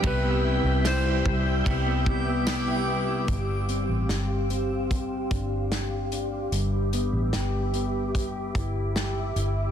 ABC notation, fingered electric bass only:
X:1
M:4/4
L:1/16
Q:1/4=74
K:Gmix
V:1 name="Fingered electric bass" clef=bass
C,,3 C,,3 C,,2 C,,8 | G,,,3 A,,, G,,,6 G,,,6 | G,,,3 A,,, G,,,6 G,,,4 G,,,2 |]